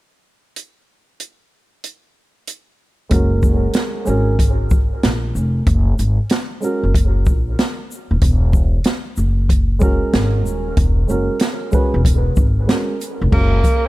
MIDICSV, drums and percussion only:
0, 0, Header, 1, 2, 480
1, 0, Start_track
1, 0, Key_signature, 6, "major"
1, 0, Tempo, 638298
1, 422, Time_signature, 4, 2, 24, 8
1, 10438, End_track
2, 0, Start_track
2, 0, Title_t, "Drums"
2, 424, Note_on_c, 9, 42, 47
2, 499, Note_off_c, 9, 42, 0
2, 902, Note_on_c, 9, 42, 48
2, 978, Note_off_c, 9, 42, 0
2, 1383, Note_on_c, 9, 42, 47
2, 1458, Note_off_c, 9, 42, 0
2, 1861, Note_on_c, 9, 42, 50
2, 1936, Note_off_c, 9, 42, 0
2, 2338, Note_on_c, 9, 42, 77
2, 2341, Note_on_c, 9, 36, 88
2, 2413, Note_off_c, 9, 42, 0
2, 2416, Note_off_c, 9, 36, 0
2, 2578, Note_on_c, 9, 36, 77
2, 2580, Note_on_c, 9, 82, 46
2, 2653, Note_off_c, 9, 36, 0
2, 2655, Note_off_c, 9, 82, 0
2, 2809, Note_on_c, 9, 42, 62
2, 2820, Note_on_c, 9, 38, 92
2, 2885, Note_off_c, 9, 42, 0
2, 2895, Note_off_c, 9, 38, 0
2, 3055, Note_on_c, 9, 82, 47
2, 3131, Note_off_c, 9, 82, 0
2, 3301, Note_on_c, 9, 36, 74
2, 3306, Note_on_c, 9, 42, 72
2, 3377, Note_off_c, 9, 36, 0
2, 3381, Note_off_c, 9, 42, 0
2, 3537, Note_on_c, 9, 82, 47
2, 3544, Note_on_c, 9, 36, 81
2, 3613, Note_off_c, 9, 82, 0
2, 3619, Note_off_c, 9, 36, 0
2, 3785, Note_on_c, 9, 42, 54
2, 3786, Note_on_c, 9, 38, 96
2, 3861, Note_off_c, 9, 42, 0
2, 3862, Note_off_c, 9, 38, 0
2, 4029, Note_on_c, 9, 82, 44
2, 4104, Note_off_c, 9, 82, 0
2, 4262, Note_on_c, 9, 36, 99
2, 4262, Note_on_c, 9, 42, 80
2, 4337, Note_off_c, 9, 36, 0
2, 4337, Note_off_c, 9, 42, 0
2, 4505, Note_on_c, 9, 42, 48
2, 4505, Note_on_c, 9, 82, 49
2, 4580, Note_off_c, 9, 42, 0
2, 4580, Note_off_c, 9, 82, 0
2, 4735, Note_on_c, 9, 42, 63
2, 4745, Note_on_c, 9, 38, 95
2, 4810, Note_off_c, 9, 42, 0
2, 4820, Note_off_c, 9, 38, 0
2, 4980, Note_on_c, 9, 82, 49
2, 5055, Note_off_c, 9, 82, 0
2, 5222, Note_on_c, 9, 36, 79
2, 5229, Note_on_c, 9, 42, 77
2, 5298, Note_off_c, 9, 36, 0
2, 5305, Note_off_c, 9, 42, 0
2, 5459, Note_on_c, 9, 82, 47
2, 5464, Note_on_c, 9, 36, 80
2, 5534, Note_off_c, 9, 82, 0
2, 5539, Note_off_c, 9, 36, 0
2, 5707, Note_on_c, 9, 42, 55
2, 5708, Note_on_c, 9, 38, 95
2, 5782, Note_off_c, 9, 42, 0
2, 5783, Note_off_c, 9, 38, 0
2, 5950, Note_on_c, 9, 82, 46
2, 6025, Note_off_c, 9, 82, 0
2, 6179, Note_on_c, 9, 42, 81
2, 6180, Note_on_c, 9, 36, 94
2, 6254, Note_off_c, 9, 42, 0
2, 6255, Note_off_c, 9, 36, 0
2, 6417, Note_on_c, 9, 36, 83
2, 6419, Note_on_c, 9, 82, 51
2, 6492, Note_off_c, 9, 36, 0
2, 6495, Note_off_c, 9, 82, 0
2, 6650, Note_on_c, 9, 42, 67
2, 6660, Note_on_c, 9, 38, 92
2, 6725, Note_off_c, 9, 42, 0
2, 6735, Note_off_c, 9, 38, 0
2, 6893, Note_on_c, 9, 82, 48
2, 6969, Note_off_c, 9, 82, 0
2, 7139, Note_on_c, 9, 36, 71
2, 7143, Note_on_c, 9, 42, 73
2, 7214, Note_off_c, 9, 36, 0
2, 7218, Note_off_c, 9, 42, 0
2, 7373, Note_on_c, 9, 82, 47
2, 7381, Note_on_c, 9, 36, 80
2, 7448, Note_off_c, 9, 82, 0
2, 7457, Note_off_c, 9, 36, 0
2, 7622, Note_on_c, 9, 42, 56
2, 7623, Note_on_c, 9, 38, 97
2, 7697, Note_off_c, 9, 42, 0
2, 7698, Note_off_c, 9, 38, 0
2, 7867, Note_on_c, 9, 82, 49
2, 7942, Note_off_c, 9, 82, 0
2, 8099, Note_on_c, 9, 42, 73
2, 8100, Note_on_c, 9, 36, 91
2, 8174, Note_off_c, 9, 42, 0
2, 8175, Note_off_c, 9, 36, 0
2, 8340, Note_on_c, 9, 82, 46
2, 8416, Note_off_c, 9, 82, 0
2, 8570, Note_on_c, 9, 42, 67
2, 8581, Note_on_c, 9, 38, 98
2, 8646, Note_off_c, 9, 42, 0
2, 8656, Note_off_c, 9, 38, 0
2, 8815, Note_on_c, 9, 82, 46
2, 8822, Note_on_c, 9, 36, 76
2, 8890, Note_off_c, 9, 82, 0
2, 8897, Note_off_c, 9, 36, 0
2, 9061, Note_on_c, 9, 36, 82
2, 9066, Note_on_c, 9, 42, 79
2, 9136, Note_off_c, 9, 36, 0
2, 9141, Note_off_c, 9, 42, 0
2, 9297, Note_on_c, 9, 82, 45
2, 9302, Note_on_c, 9, 36, 81
2, 9372, Note_off_c, 9, 82, 0
2, 9378, Note_off_c, 9, 36, 0
2, 9543, Note_on_c, 9, 42, 53
2, 9544, Note_on_c, 9, 38, 98
2, 9618, Note_off_c, 9, 42, 0
2, 9619, Note_off_c, 9, 38, 0
2, 9786, Note_on_c, 9, 42, 46
2, 9786, Note_on_c, 9, 82, 46
2, 9861, Note_off_c, 9, 42, 0
2, 9861, Note_off_c, 9, 82, 0
2, 10020, Note_on_c, 9, 36, 99
2, 10020, Note_on_c, 9, 49, 78
2, 10095, Note_off_c, 9, 36, 0
2, 10095, Note_off_c, 9, 49, 0
2, 10257, Note_on_c, 9, 36, 83
2, 10261, Note_on_c, 9, 42, 52
2, 10261, Note_on_c, 9, 82, 51
2, 10332, Note_off_c, 9, 36, 0
2, 10336, Note_off_c, 9, 42, 0
2, 10336, Note_off_c, 9, 82, 0
2, 10438, End_track
0, 0, End_of_file